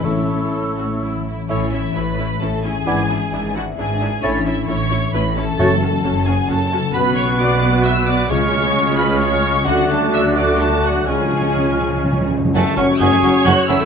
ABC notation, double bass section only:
X:1
M:3/4
L:1/16
Q:1/4=131
K:A
V:1 name="Double bass section" clef=bass
A,,,8- A,,,2 z2 | A,,,4 A,,,4 A,,,4 | G,,,4 G,,,4 G,,,4 | A,,,4 A,,,4 A,,,4 |
F,,,4 F,,,4 F,,,4 | [K:F#m] B,,,12 | C,,12 | D,,12 |
C,,8- C,,2 z2 | F,,, z F,,, z F,,, z F,,, z F,,, z F,,, z |]